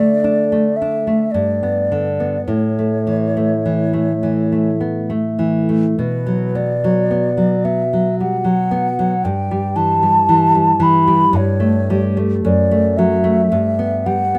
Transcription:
Already playing: nylon-string guitar D3 A3 D4, flute D5
0.24 nylon-string guitar D4
0.52 nylon-string guitar A3
0.76 flute E5
0.82 nylon-string guitar D4
1.07 nylon-string guitar A3
1.31 nylon-string guitar G2, flute D5
1.63 nylon-string guitar B3
1.92 nylon-string guitar D3
2.20 nylon-string guitar B3
2.46 nylon-string guitar A2, flute C#5
2.79 nylon-string guitar A3
3.07 nylon-string guitar E3
3.37 nylon-string guitar A3
3.65 nylon-string guitar E3
3.93 nylon-string guitar A3
4.23 nylon-string guitar E3
4.52 nylon-string guitar A3
4.81 nylon-string guitar B3
5.10 nylon-string guitar A3
5.39 nylon-string guitar E3
5.69 nylon-string guitar A3
5.97 nylon-string guitar B2, flute B4
6.26 nylon-string guitar F#3
6.55 nylon-string guitar B3, flute D5
6.84 nylon-string guitar F#3
7.11 nylon-string guitar B3
7.37 nylon-string guitar F#3
7.65 nylon-string guitar B3, flute E5
7.93 nylon-string guitar F#3
8.20 nylon-string guitar G3, flute F#5
8.44 nylon-string guitar F#3
8.71 nylon-string guitar B3
8.99 nylon-string guitar F#3
9.24 nylon-string guitar G2, flute G5
9.51 nylon-string guitar G3
9.76 nylon-string guitar E3, flute A5
10.03 nylon-string guitar G3
10.29 nylon-string guitar E3
10.55 nylon-string guitar G3
10.80 nylon-string guitar E3, flute B5
11.08 nylon-string guitar G3
11.33 nylon-string guitar G2, flute C#5
11.60 nylon-string guitar A3
11.90 nylon-string guitar G3
12.17 nylon-string guitar A3
12.44 nylon-string guitar F#2, flute D5
12.71 nylon-string guitar A3
12.97 nylon-string guitar F#3, flute E5
13.24 nylon-string guitar A3
13.52 nylon-string guitar G2
13.79 nylon-string guitar B3
14.06 nylon-string guitar G3, flute F#5
14.35 nylon-string guitar B3

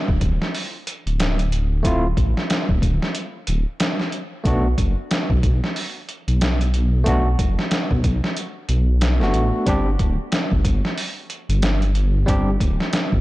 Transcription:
0.08 detuned saw bass D1, kick
0.21 detuned saw bass D1, kick, closed hi-hat
0.42 snare
0.55 open hi-hat
0.87 closed hi-hat
1.06 detuned saw bass D1, closed hi-hat
1.20 snare, closed hi-hat
1.39 closed hi-hat
1.52 closed hi-hat
1.83 detuned saw bass D1, tine electric piano A3 C4 E4 F4, kick, closed hi-hat
2.17 detuned saw bass A1, kick, closed hi-hat
2.37 snare
2.50 snare, closed hi-hat
2.69 detuned saw bass D1, kick
2.82 detuned saw bass D1, kick, closed hi-hat
3.02 snare
3.15 closed hi-hat
3.47 detuned saw bass D1, closed hi-hat
3.80 snare, closed hi-hat
4.00 snare
4.12 closed hi-hat
4.44 detuned saw bass B1, tine electric piano A3 B3 D4 F#4, kick, closed hi-hat
4.78 detuned saw bass F#1, kick, closed hi-hat
5.11 snare, closed hi-hat
5.30 detuned saw bass B1, kick
5.43 detuned saw bass B1, kick, closed hi-hat
5.64 snare
5.76 open hi-hat
6.09 closed hi-hat
6.28 detuned saw bass B1, closed hi-hat
6.41 snare, closed hi-hat
6.61 closed hi-hat
6.74 closed hi-hat
7.04 detuned saw bass B1, tine electric piano A3 B3 D4, kick, closed hi-hat
7.08 tine electric piano F#4
7.39 detuned saw bass F#1, kick, closed hi-hat
7.59 snare
7.71 snare, closed hi-hat
7.91 detuned saw bass B1, kick
8.04 detuned saw bass B1, kick, closed hi-hat
8.24 snare
8.37 closed hi-hat
8.69 detuned saw bass B1, closed hi-hat
9.01 snare, closed hi-hat
9.20 detuned saw bass F#1, tine electric piano A3 B3 D4 F#4, snare
9.34 detuned saw bass A1, closed hi-hat
9.66 detuned saw bass G1, tine electric piano G3 C4 D4 G4, kick, closed hi-hat
9.99 detuned saw bass D1, kick, closed hi-hat
10.32 snare, closed hi-hat
10.52 detuned saw bass G1, kick
10.65 detuned saw bass G1, kick, closed hi-hat
10.85 snare
10.98 open hi-hat
11.30 closed hi-hat
11.49 detuned saw bass G1, closed hi-hat
11.62 snare, closed hi-hat
11.82 closed hi-hat
11.95 closed hi-hat
12.26 detuned saw bass G1, tine electric piano G3 C4 D4 G4, kick, closed hi-hat
12.60 detuned saw bass D1, kick, closed hi-hat
12.80 snare
12.93 snare, closed hi-hat
13.12 detuned saw bass G1, kick

